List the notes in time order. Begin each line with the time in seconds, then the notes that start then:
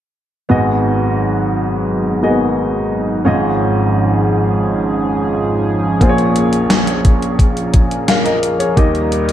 0.49 G#1 G#2 F#3 B3 D#4 F#4 G#4 D#5
2.22 A#3 F#4 G#4 D#5
2.29 B3
3.25 G#1 G#2 F3 C#4 F4 G#4 D#5
6.00 A#1 A#2 A#3 F4 G#4 C5, kick, closed hi-hat
6.09 C#5
6.18 closed hi-hat
6.36 closed hi-hat
6.53 closed hi-hat
6.70 snare, closed hi-hat
6.87 closed hi-hat
7.05 kick, closed hi-hat
7.22 closed hi-hat
7.39 kick, closed hi-hat
7.57 closed hi-hat
7.74 kick, closed hi-hat
7.91 closed hi-hat
8.08 A#4 F5, snare, closed hi-hat
8.25 A#4 D#5, closed hi-hat
8.43 closed hi-hat
8.59 G#4 C#5, closed hi-hat
8.76 D#2 D#3 G3 A#3 D#4 G4 A#4 D#5, kick, closed hi-hat
8.95 closed hi-hat
9.12 closed hi-hat
9.29 closed hi-hat